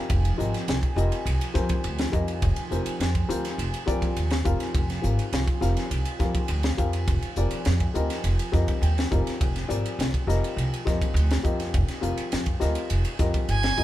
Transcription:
Already playing: F3 G3 C4 D#4 F4 A#4 F5 G#5
0.10 F1, kick, ride
0.25 ride
0.38 G#1 G3 C4 F4 A#4 D#5, hi-hat pedal
0.54 snare, ride
0.68 C2, snare, ride
0.83 kick, ride
0.96 F1 G3 C4 F4 A#4 D#5, hi-hat pedal
1.12 ride
1.25 C2, ride
1.41 ride
1.54 F2 G3 C4 F4 A#4 C5, kick, snare, hi-hat pedal
1.69 kick, ride
1.84 D2, ride
1.98 snare, ride
2.12 F2 G3 C4 F4 A#4 D#5, kick, hi-hat pedal
2.28 ride
2.42 F1, kick, ride
2.56 muted upright bass stroke, ride
2.71 F1 G3 C4 F4 A#4 C5, hi-hat pedal
2.86 ride
3.00 F2, snare, ride
3.15 kick, ride
3.28 D2 G3 C4 F4 A#4 C5, hi-hat pedal
3.45 snare, ride
3.58 F1, ride
3.74 ride
3.86 F2 G3 C4 F4 A#4 D5, kick, hi-hat pedal
4.02 muted upright bass stroke, kick, ride
4.16 D#2, ride
4.30 snare, ride
4.45 F1 G3 C4 F4 A#4 F5, kick, hi-hat pedal
4.60 snare, ride
4.75 F1, kick, ride
4.90 snare, ride
5.02 G#1 G3 C4 F4 A#4 F5, hi-hat pedal
5.19 ride
5.32 C2, snare, ride
5.48 kick, ride
5.61 F1 G3 C4 F4 A#4 F5, snare, hi-hat pedal
5.77 snare, ride
5.91 C2, ride
6.05 ride
6.19 F2 G3 C4 F4 A#4 F5, kick, snare, hi-hat pedal
6.35 kick, ride
6.48 D2, ride
6.63 snare, ride
6.77 F2 G3 C4 F4 A#4 F5, kick, hi-hat pedal
6.93 ride
7.08 F1, kick, ride
7.22 muted upright bass stroke, ride
7.36 F1 G3 C4 F4 A#4 D5, hi-hat pedal
7.51 ride
7.65 F2, snare, ride
7.80 kick, ride
7.94 D2 G3 C4 F4 A#4 D#5, hi-hat pedal
8.10 snare, ride
8.24 F1, ride
8.39 ride
8.52 F2 G3 C4 F4 A#4 D#5, kick, snare, hi-hat pedal
8.68 muted upright bass stroke, kick, ride
8.82 D#2 G5, ride
8.98 snare, ride
9.11 F1 G3 C4 F4 A#4 D#5, kick, hi-hat pedal
9.26 muted upright bass stroke, snare, ride
9.41 F1, kick, ride
9.56 snare, ride
9.68 G#1 G3 C4 F4 A#4 D5, hi-hat pedal
9.86 ride
9.99 C2, snare, ride
10.14 kick, ride
10.27 F1 G3 C4 F4 A#4 D#5, snare, hi-hat pedal
10.44 ride
10.57 C2, ride
10.74 ride
10.85 F2 G3 C4 F4 A#4 D#5, kick, snare, hi-hat pedal
11.02 kick, ride
11.14 D2, ride
11.30 snare, ride
11.43 F2 G3 C4 F4 A#4 D#5, kick, hi-hat pedal
11.60 snare, ride
11.74 F1, kick, ride
11.88 snare, ride
12.01 F1 G3 C4 F4 A#4 F5, hi-hat pedal
12.18 muted upright bass stroke, ride
12.32 F2, snare, ride
12.46 kick, ride
12.60 D2 G3 C4 F4 A#4 D#5, snare, hi-hat pedal
12.75 ride
12.90 F1, ride
13.05 ride
13.19 F2 G3 C4 F4 A#4 D#5, kick, snare, hi-hat pedal
13.34 muted upright bass stroke, kick, ride
13.49 G1 G#5, ride
13.63 snare, ride
13.77 F1 G3 C4 F4 A#4 D#5, kick, hi-hat pedal

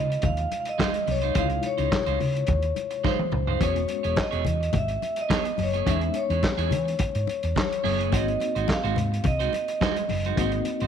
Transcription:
Already playing: C3 C#3 G#3 D#4 F4 D#5
0.10 muted clean electric guitar stroke, closed hi-hat
0.22 D#2 F5, muted clean electric guitar stroke, kick, closed hi-hat, muted conga, low conga
0.37 muted clean electric guitar stroke, closed hi-hat
0.52 closed hi-hat, muted conga
0.60 F5
0.65 D#5, muted clean electric guitar stroke, closed hi-hat
0.78 G#3 D#4 F4 C5, kick, snare, clap, high conga
0.94 muted clean electric guitar stroke, closed hi-hat
1.07 C2, muted clean electric guitar stroke, open hi-hat, high conga
1.11 C#5
1.21 G#3 D#4 F4 C5, closed hi-hat
1.34 C#2 C3 G#3 D#4 E4 F4 C5, kick, closed hi-hat, muted conga
1.39 F5
1.44 F4
1.49 muted clean electric guitar stroke, closed hi-hat
1.63 C#5, muted clean electric guitar stroke, closed hi-hat, muted conga
1.78 C#2 G#3 D#4 F4 C5, closed hi-hat
1.91 muted clean electric guitar stroke, kick, snare, clap, high conga
2.06 C#2 G#3 D#4 F4 C5, closed hi-hat
2.19 C#3, muted clean electric guitar stroke, open hi-hat, low conga
2.34 muted clean electric guitar stroke, closed hi-hat
2.47 D#2, muted clean electric guitar stroke, kick, closed hi-hat, muted conga, low conga
2.62 muted clean electric guitar stroke, closed hi-hat
2.76 closed hi-hat, muted conga
2.91 muted clean electric guitar stroke, closed hi-hat
3.04 G#3 D#4 F4 C5, kick, snare, high conga
3.19 muted clean electric guitar stroke, high tom
3.32 C#2, muted clean electric guitar stroke, mid tom, high conga
3.47 G#3 D#4 F4 C5, floor tom
3.60 E1 G#3 B3 C#4 E4 F#4 G#4 C#5, kick, closed hi-hat, muted conga
3.76 muted clean electric guitar stroke, closed hi-hat
3.88 muted clean electric guitar stroke, closed hi-hat, muted conga
4.03 E1 B3 E4 G#4 C#5, closed hi-hat
4.16 kick, snare, clap, high conga
4.21 D#5
4.31 E1 B3 E4 G#4 C#5, closed hi-hat
4.45 E2, muted clean electric guitar stroke, closed hi-hat, low conga
4.61 muted clean electric guitar stroke, closed hi-hat
4.73 G#1, muted clean electric guitar stroke, kick, closed hi-hat, muted conga, low conga
4.77 E5
4.88 muted clean electric guitar stroke, closed hi-hat
5.02 closed hi-hat, muted conga
5.16 muted clean electric guitar stroke, closed hi-hat
5.21 D#5
5.29 B3 E4 G#4 C#5, kick, snare, clap, high conga
5.45 muted clean electric guitar stroke, closed hi-hat
5.58 F#1, muted clean electric guitar stroke, open hi-hat, high conga
5.63 C#5
5.74 B3 E4 G#4 C#5, closed hi-hat
5.86 E2 G#3 B3 C#4 D#4 E4 G#4 C#5 E5, kick, closed hi-hat, muted conga
6.01 muted clean electric guitar stroke, closed hi-hat
6.14 C#5, muted clean electric guitar stroke, closed hi-hat, muted conga
6.30 E2 B3 E4 G#4 C#5, closed hi-hat
6.43 muted clean electric guitar stroke, kick, snare, clap, high conga
6.57 E2 B3 E4 G#4 C#5, closed hi-hat
6.71 E3, muted clean electric guitar stroke, closed hi-hat, low conga
6.85 muted clean electric guitar stroke, closed hi-hat
6.99 muted clean electric guitar stroke, kick, closed hi-hat, muted conga
7.15 G#2, muted clean electric guitar stroke, closed hi-hat
7.27 closed hi-hat, muted conga
7.43 E2, muted clean electric guitar stroke, closed hi-hat
7.56 C#5, muted clean electric guitar stroke, kick, snare, clap, high conga
7.70 muted clean electric guitar stroke, closed hi-hat
7.84 F#1 B3 E4 G#4 C#5, open hi-hat, high conga
7.99 B3 E4 G#4 C#5, closed hi-hat
8.10 G#1 G#3 A#3 C4 D#4 F#4 C5, kick, closed hi-hat, muted conga
8.15 D#5
8.27 muted clean electric guitar stroke, closed hi-hat
8.40 muted clean electric guitar stroke, closed hi-hat, muted conga
8.55 G#1 G#3 D#4 F#4 C5, closed hi-hat
8.68 F5, kick, snare, clap, high conga
8.84 G#1 G#3 D#4 F#4 C5, closed hi-hat
8.96 G#2, muted clean electric guitar stroke, closed hi-hat, low conga
9.12 muted clean electric guitar stroke, closed hi-hat
9.24 C2 D#5, muted clean electric guitar stroke, kick, closed hi-hat, muted conga, low conga
9.39 G#3 D#4 F#4 C5, closed hi-hat
9.53 muted clean electric guitar stroke, closed hi-hat, muted conga
9.68 muted clean electric guitar stroke, closed hi-hat
9.81 G#3 D#4 F#4 C5, kick, snare, clap, high conga
9.96 muted clean electric guitar stroke, closed hi-hat
10.09 F#1, muted clean electric guitar stroke, open hi-hat, high conga
10.25 G#3 D#4 F#4 C5, closed hi-hat
10.36 G#1 G#3 A#3 C4 D#4 F#4, kick, closed hi-hat, muted conga
10.40 F#4 C5
10.52 muted clean electric guitar stroke, closed hi-hat
10.65 muted clean electric guitar stroke, closed hi-hat, muted conga
10.80 G#1 G#3 D#4 F#4 C5, closed hi-hat

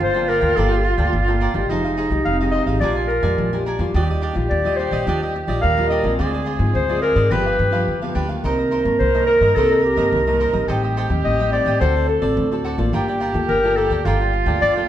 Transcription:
Already playing: F4 A4
0.00 G1 D3 C5
0.15 A#3 F4 A4 A#4 D5 G5
0.28 F4 A#4 D5 G5
0.41 D2 A#4 D5 G5
0.57 G1 G3 A#3 F4 A4 A#4 D5 G5
0.71 A#4 D5 G5
0.78 G4
0.84 F4, muted cavaquinho stroke
0.98 D2 A#3 F4 A4 A#4 D5 G5
1.13 G1 D3
1.28 A#3 F4 A4 A#4 D5 G5
1.41 F4 A#4 D5 G5
1.54 G1 G#3 D#4 G4 A#4 D5 G5
1.69 F1 F3 D#4 G#4 C5 F5
1.84 G#4 C5 F5
1.97 D#4 G#4 C5 F5
2.10 C2 G#3 D#4 G4, muted cavaquinho stroke
2.25 F1 C3 F5
2.40 G#3 D#4 G4 G#4 C5 F5
2.52 D#4 G#4 C5 D#5 F5
2.66 G#1 G#4 C5 F5
2.80 A#1 A#2 G#3 D4 F4 G4 A#4 D5 G#5
2.96 A#4 D5 G#5
3.08 A#4, muted cavaquinho stroke
3.22 F2 G#3 D4 G4 A#4 D5 G#5
3.38 A#1 F3
3.53 G#3 D4 G4 A#4 D5 G#5
3.66 D4 A#4 D5 G#5
3.79 F2 G3 D4 F4 A#4 D5 G#5
3.94 D#2 D#3 D4 G4 D5 D#5
4.10 G4 D5 D#5
4.22 D4 G4 D5 D#5
4.35 A#1 G3 D4 F4, muted cavaquinho stroke
4.49 D#2 A#2 D5
4.64 G3 D4 F4 G4 D5 D#5
4.76 D4 G4 C5 D5 D#5
4.91 A#1 G4 D5 D#5
5.06 D#2 D#3 G3 D4 F4 G4 D5 D#5
5.22 G4 D5 D#5
5.35 muted cavaquinho stroke
5.47 A#1 G3 D4 F4 G4 D5 D#5
5.62 D#2 A#2 A#4 F5
5.77 G3 D4 F4 G4 D5 D#5
5.89 D4 G4 D5 D#5
6.03 A#1 G#3 C4 F4 G4 D5 D#5
6.17 D2 D3 F4 G#4 C5 D5
6.33 G#4 C5 D5
6.45 F4 G#4 C5 D5
6.59 G#2 G#3 C4 F4, muted cavaquinho stroke
6.74 D2 D3 C5
6.89 G#3 C4 F4 G#4 C5 D5
7.02 F4 G#4 A#4 C5 D5
7.16 G#2 G#4 C5 D5
7.30 G1 G2 F3 B3 D4 G4 B4 F5
7.46 B4 F5
7.59 G2, muted cavaquinho stroke
7.71 F3 B3 D4 G4 B4 F5
7.87 F2 D3
8.02 F3 B3 D4 G4 B4 F5
8.15 D2 D4 G4 B4 F5
8.29 D#3 A#3 D4 G4 B4 F5
8.43 C2 C3 D#4 A#4 C5 D#5
8.58 A#4 C5 D#5
8.71 D#4 A#4 C5 D#5
8.85 G2 D#3 A#3 D4, muted cavaquinho stroke
8.99 C2 G2 C5
9.14 D#3 A#3 D4 A#4 C5 D#5
9.26 D#4 A#4 C5 D#5
9.41 G2 A#4 C5 D#5
9.55 C2 C3 D#3 A#3 D4 D#4 A4 A#4 C5 D#5
9.71 A#4 C5 D#5
9.84 G4, muted cavaquinho stroke
9.97 G2 D#3 A#3 D4 A#4 C5 D#5
10.12 C2 G2
10.27 D#3 A#3 D4 A#4 C5 D#5
10.40 D#4 A#4 C5 D#5
10.53 A#1 G3 C4 D#4 A#4 C5 D#5
10.68 A1 A2 G4 A4 C5 D#5 G5
10.83 C5 D#5 G5
10.97 A4 C5 D#5 G5
11.10 D#2 G3 C4 D#4, muted cavaquinho stroke
11.25 A1 A2 D#5
11.39 G3 C4 D#4 C5 D#5 G5
11.52 A4 C5 D5 D#5 G5
11.66 A1 C5 D#5 G5
11.80 D2 D3 C4 F#4 A4 C5 D5
11.96 A4 C5 D5
12.08 A4, muted cavaquinho stroke
12.22 A1 C4 F#4 A4 C5 D5
12.37 D2 A2
12.51 C4 F#4 A4 C5 D5
12.64 F#4 A4 C5 D5
12.78 A1 A#3 F4 A4 C5 D5
12.92 G1 G3 F4 G4 A#4 D5 G5
13.08 A#4 D5 G5
13.20 F4 A#4 D5 G5
13.34 D2 A#3 F4 A4, muted cavaquinho stroke
13.48 G1 D3 A#4
13.64 A#3 F4 A4 A#4 D5 G5
13.77 F4 A4 A#4 D5 G5
13.90 D2 A#4 D5 G5
14.05 G1 G3 A#3 F4 A4 A#4 D5 G5
14.20 A#4 D5 G5
14.33 muted cavaquinho stroke
14.46 D2 A#3 F4 A4 A#4 D5 G5
14.61 G1 D3 D5
14.76 A#3 F4 A4 A#4 D5 G5

